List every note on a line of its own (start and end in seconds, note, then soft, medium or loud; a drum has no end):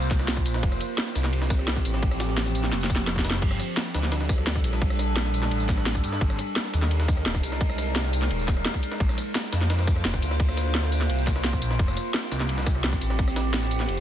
0.00 0.44 C2 loud
0.00 0.60 A#3 medium
0.00 0.60 F4 medium
0.00 0.60 C5 medium
0.00 tambourine soft
0.11 kick loud
0.11 snare soft
0.11 closed hi-hat medium
0.11 ride medium
0.11 tambourine medium
0.19 cross-stick soft
0.19 snare medium
0.28 snare loud
0.28 snare soft
0.28 closed hi-hat medium
0.28 ride medium
0.37 kick medium
0.37 tambourine soft
0.46 0.62 A#1 loud
0.46 closed hi-hat medium
0.46 ride medium
0.46 tambourine medium
0.54 snare medium
0.63 3.39 F3 medium
0.63 3.39 C4 medium
0.63 3.39 G4 loud
0.63 kick loud
0.63 closed hi-hat loud
0.63 ride medium
0.72 cross-stick soft
0.72 tambourine soft
0.81 cross-stick soft
0.81 closed hi-hat medium
0.81 ride medium
0.81 tambourine medium
0.98 snare loud
0.98 closed hi-hat loud
0.98 ride medium
1.07 snare soft
1.15 1.66 C2 loud
1.15 snare medium
1.15 closed hi-hat medium
1.15 ride medium
1.15 tambourine medium
1.24 snare soft
1.24 snare medium
1.33 closed hi-hat loud
1.33 ride medium
1.42 snare medium
1.50 kick loud
1.50 snare medium
1.50 closed hi-hat medium
1.50 ride medium
1.50 tambourine medium
1.59 cross-stick soft
1.68 1.84 C2 loud
1.68 snare loud
1.68 closed hi-hat medium
1.68 ride medium
1.76 kick medium
1.76 snare soft
1.76 tambourine soft
1.85 2.71 A1 loud
1.85 closed hi-hat medium
1.85 ride medium
1.85 tambourine medium
1.94 cross-stick soft
1.94 snare soft
2.03 kick loud
2.03 closed hi-hat loud
2.03 ride medium
2.11 cross-stick medium
2.11 tambourine soft
2.20 cross-stick soft
2.20 snare loud
2.20 closed hi-hat medium
2.20 ride medium
2.20 tambourine medium
2.29 snare soft
2.37 snare medium
2.37 snare loud
2.37 closed hi-hat loud
2.37 ride medium
2.46 snare soft
2.46 tambourine soft
2.55 closed hi-hat medium
2.55 ride medium
2.55 tambourine medium
2.64 snare soft
2.72 3.41 F1 loud
2.72 snare medium
2.72 closed hi-hat loud
2.72 ride medium
2.81 snare medium
2.81 tambourine soft
2.90 kick loud
2.90 closed hi-hat medium
2.90 ride medium
2.90 tambourine medium
2.96 snare medium
3.07 snare loud
3.07 snare medium
3.07 closed hi-hat loud
3.07 ride medium
3.16 kick medium
3.16 snare loud
3.16 tambourine soft
3.25 snare loud
3.25 closed hi-hat medium
3.25 ride medium
3.25 tambourine medium
3.30 snare loud
3.33 snare loud
3.33 ride medium
3.42 3.58 G1 loud
3.42 6.18 G3 medium
3.42 6.18 D4 medium
3.42 6.18 A4 medium
3.42 kick loud
3.42 closed hi-hat loud
3.42 ride medium
3.42 crash medium
3.51 cross-stick medium
3.51 tambourine soft
3.60 cross-stick soft
3.60 closed hi-hat medium
3.60 ride medium
3.60 tambourine medium
3.77 snare loud
3.77 closed hi-hat loud
3.77 ride medium
3.86 snare soft
3.94 4.45 D2 loud
3.94 snare loud
3.94 closed hi-hat medium
3.94 ride medium
3.94 tambourine medium
4.03 snare soft
4.03 snare medium
4.12 snare loud
4.12 closed hi-hat loud
4.12 ride medium
4.21 snare medium
4.29 kick loud
4.29 snare medium
4.29 closed hi-hat medium
4.29 ride medium
4.29 tambourine medium
4.38 cross-stick soft
4.47 4.63 D2 loud
4.47 snare loud
4.47 closed hi-hat loud
4.47 ride medium
4.55 kick medium
4.55 snare soft
4.55 tambourine soft
4.64 5.50 A#1 loud
4.64 closed hi-hat medium
4.64 ride medium
4.64 tambourine medium
4.73 cross-stick soft
4.73 snare soft
4.82 kick loud
4.82 closed hi-hat medium
4.82 ride medium
4.90 cross-stick medium
4.90 tambourine soft
4.99 cross-stick soft
4.99 snare soft
4.99 closed hi-hat medium
4.99 ride medium
4.99 tambourine medium
5.16 snare loud
5.16 closed hi-hat loud
5.16 ride medium
5.25 snare medium
5.34 closed hi-hat medium
5.34 open hi-hat medium
5.34 tambourine medium
5.43 snare soft
5.43 snare medium
5.51 6.02 A1 loud
5.51 closed hi-hat loud
5.51 ride medium
5.60 tambourine soft
5.69 kick loud
5.69 snare soft
5.69 closed hi-hat medium
5.69 ride medium
5.69 tambourine medium
5.77 cross-stick soft
5.77 snare soft
5.86 snare loud
5.86 snare soft
5.86 closed hi-hat medium
5.86 ride medium
5.95 kick medium
5.95 tambourine soft
6.04 6.20 G2 loud
6.04 closed hi-hat medium
6.04 ride medium
6.04 tambourine medium
6.12 snare medium
6.21 6.37 G#1 loud
6.21 8.97 G#3 medium
6.21 8.98 D#4 medium
6.21 8.97 A#4 medium
6.21 kick loud
6.21 closed hi-hat medium
6.21 ride medium
6.30 cross-stick medium
6.30 tambourine soft
6.39 cross-stick soft
6.39 closed hi-hat medium
6.39 ride medium
6.39 tambourine medium
6.56 snare loud
6.56 closed hi-hat loud
6.56 ride medium
6.65 snare soft
6.74 7.24 D#2 loud
6.74 snare medium
6.74 closed hi-hat medium
6.74 ride medium
6.74 tambourine medium
6.82 snare medium
6.82 snare soft
6.91 closed hi-hat loud
6.91 ride medium
7.00 snare medium
7.08 kick loud
7.08 snare medium
7.08 closed hi-hat medium
7.08 ride medium
7.08 tambourine medium
7.17 cross-stick soft
7.26 7.42 D#1 loud
7.26 snare loud
7.26 closed hi-hat medium
7.26 ride medium
7.35 kick medium
7.35 snare soft
7.35 tambourine soft
7.43 8.29 C2 loud
7.43 closed hi-hat medium
7.43 ride medium
7.43 tambourine medium
7.52 cross-stick soft
7.52 snare soft
7.61 kick loud
7.61 closed hi-hat medium
7.61 ride medium
7.70 cross-stick soft
7.70 tambourine soft
7.78 cross-stick soft
7.78 snare soft
7.78 closed hi-hat medium
7.78 ride medium
7.78 tambourine medium
7.96 snare loud
7.96 closed hi-hat medium
7.96 ride medium
8.04 snare soft
8.13 closed hi-hat medium
8.13 open hi-hat medium
8.13 tambourine medium
8.22 snare medium
8.22 snare soft
8.31 8.64 D#1 loud
8.31 closed hi-hat medium
8.31 ride medium
8.39 tambourine soft
8.48 kick loud
8.48 snare soft
8.48 closed hi-hat medium
8.48 ride medium
8.48 tambourine medium
8.57 cross-stick soft
8.65 snare loud
8.65 closed hi-hat medium
8.65 ride medium
8.74 kick medium
8.74 tambourine soft
8.83 closed hi-hat medium
8.83 ride medium
8.83 tambourine medium
8.92 snare medium
9.00 9.16 A#1 medium
9.00 11.77 A#3 medium
9.00 11.77 F4 medium
9.00 11.77 C5 medium
9.00 kick loud
9.00 closed hi-hat medium
9.00 ride medium
9.09 cross-stick soft
9.09 tambourine soft
9.18 cross-stick soft
9.18 closed hi-hat medium
9.18 ride medium
9.18 tambourine medium
9.35 snare loud
9.35 closed hi-hat medium
9.35 ride medium
9.44 snare soft
9.53 10.04 F2 loud
9.53 snare loud
9.53 closed hi-hat medium
9.53 ride medium
9.53 tambourine medium
9.61 snare soft
9.70 snare loud
9.70 closed hi-hat medium
9.70 ride medium
9.79 snare medium
9.87 kick loud
9.87 snare medium
9.87 closed hi-hat medium
9.87 ride medium
9.87 tambourine medium
9.96 cross-stick soft
10.05 10.21 F1 loud
10.05 snare loud
10.05 closed hi-hat medium
10.05 ride medium
10.14 kick medium
10.14 snare soft
10.14 tambourine soft
10.22 11.08 D2 loud
10.22 closed hi-hat medium
10.22 ride medium
10.22 tambourine medium
10.31 cross-stick soft
10.31 snare soft
10.40 kick loud
10.40 closed hi-hat medium
10.40 ride medium
10.49 cross-stick soft
10.49 tambourine soft
10.57 cross-stick soft
10.57 snare soft
10.57 closed hi-hat medium
10.57 ride medium
10.57 tambourine medium
10.75 snare loud
10.75 closed hi-hat loud
10.75 ride medium
10.83 snare medium
10.92 closed hi-hat medium
10.92 open hi-hat medium
10.92 tambourine medium
11.01 snare medium
11.01 snare soft
11.10 11.60 C2 loud
11.10 closed hi-hat loud
11.10 ride medium
11.18 tambourine soft
11.27 kick loud
11.27 snare soft
11.27 closed hi-hat medium
11.27 ride medium
11.27 tambourine medium
11.36 cross-stick soft
11.36 snare soft
11.44 snare loud
11.44 snare soft
11.44 closed hi-hat medium
11.44 ride medium
11.53 kick medium
11.53 tambourine soft
11.62 11.78 A#1 loud
11.62 closed hi-hat medium
11.62 ride medium
11.62 tambourine medium
11.71 snare medium
11.79 14.00 F3 medium
11.79 14.00 C4 medium
11.79 14.00 G4 medium
11.79 kick loud
11.79 closed hi-hat loud
11.79 ride medium
11.88 cross-stick soft
11.88 tambourine soft
11.97 cross-stick soft
11.97 closed hi-hat medium
11.97 ride medium
11.97 tambourine medium
12.14 snare loud
12.14 closed hi-hat loud
12.14 ride medium
12.23 snare soft
12.32 12.83 C2 loud
12.32 snare medium
12.32 closed hi-hat medium
12.32 ride medium
12.32 tambourine medium
12.40 snare soft
12.40 snare medium
12.49 closed hi-hat loud
12.49 ride medium
12.58 snare medium
12.66 kick loud
12.66 snare medium
12.66 closed hi-hat medium
12.66 ride medium
12.66 tambourine medium
12.75 cross-stick soft
12.84 13.00 C2 loud
12.84 snare loud
12.84 closed hi-hat medium
12.84 ride medium
12.93 kick medium
12.93 snare soft
12.93 tambourine soft
13.01 13.87 A1 loud
13.01 closed hi-hat medium
13.01 ride medium
13.01 tambourine medium
13.10 cross-stick soft
13.10 snare soft
13.19 kick loud
13.19 closed hi-hat loud
13.19 ride medium
13.28 cross-stick medium
13.28 tambourine soft
13.36 cross-stick soft
13.36 snare loud
13.36 closed hi-hat medium
13.36 ride medium
13.36 tambourine medium
13.54 snare loud
13.54 closed hi-hat loud
13.54 ride medium
13.62 snare soft
13.62 tambourine soft
13.71 closed hi-hat medium
13.71 open hi-hat medium
13.71 tambourine medium
13.80 snare soft
13.80 snare medium
13.89 14.00 F1 loud
13.89 closed hi-hat loud
13.89 ride medium